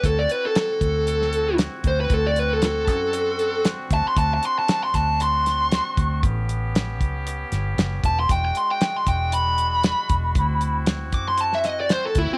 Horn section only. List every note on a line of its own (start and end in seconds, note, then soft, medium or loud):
0.03 6.19 C4 medium
0.03 3.10 E4 medium
0.03 6.18 F#4 medium
3.13 6.19 D4 medium
6.22 8.27 B3 medium
6.22 8.27 C#4 medium
6.22 8.27 G4 medium
8.29 10.34 G#3 medium
8.29 10.34 D4 medium
8.29 10.34 F#4 medium
10.36 12.38 C4 medium
10.36 12.38 E4 medium
10.36 12.38 F#4 medium